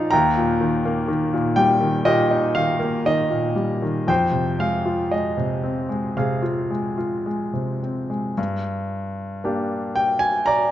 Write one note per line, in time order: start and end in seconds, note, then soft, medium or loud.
0.00 0.14 F3 medium
0.00 0.14 D#4 soft
0.00 0.11 F4 soft
0.00 0.14 A#4 medium
0.00 0.13 D5 medium
0.00 0.14 F5 medium
0.11 4.06 D#2 medium
0.11 1.54 G5 medium
0.11 1.61 A#5 medium
0.38 1.32 A#2 soft
0.61 1.07 D#3 soft
0.85 2.77 A#3 medium
1.08 1.79 D#3 soft
1.33 2.04 A#2 soft
1.56 3.53 G3 medium
1.56 2.07 G5 medium
1.81 2.54 D#3 soft
2.05 3.29 A#2 medium
2.05 4.05 G4 medium
2.05 2.56 D#5 medium
2.31 4.05 D#4 soft
2.55 3.04 D#3 soft
2.55 3.07 F5 medium
2.80 4.05 A#3 soft
3.06 3.81 D#3 soft
3.06 4.12 D#5 medium
3.30 4.06 A#2 soft
3.56 4.07 G3 soft
3.82 4.08 D#3 soft
4.08 8.33 F2 medium
4.08 6.14 C5 medium
4.08 4.62 G5 medium
4.32 5.36 C3 soft
4.59 5.10 G#3 soft
4.59 5.13 F5 medium
4.86 6.41 F4 soft
5.11 5.88 G#3 soft
5.11 6.13 D#5 medium
5.37 6.15 C3 soft
5.64 7.79 C4 soft
5.89 6.69 G#3 soft
6.17 7.52 C3 soft
6.17 8.34 G#4 soft
6.17 7.79 F5 soft
6.42 6.96 F4 soft
6.70 7.25 G#3 soft
6.98 8.33 F4 soft
7.26 8.08 G#3 soft
7.53 8.34 C3 soft
7.83 8.36 C4 soft
8.10 8.37 G#3 soft
8.38 10.71 G2 soft
9.44 10.71 A#3 soft
9.44 10.71 D4 soft
9.44 10.71 G4 soft
9.96 10.22 G5 medium
10.19 10.47 G#5 medium
10.46 10.71 D5 medium
10.46 10.71 A#5 medium